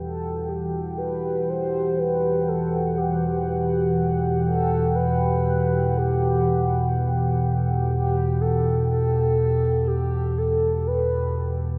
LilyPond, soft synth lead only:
\new Staff \with { instrumentName = "Soft synth lead" } { \time 4/4 \key e \minor \tempo 4 = 61 a'8 g'8 b'8 c''8 b'8 a'8 g'8. r16 | r8 a'8 b'4 g'4. r8 | g'8 a'8 a'4 g'8 a'8 b'4 | }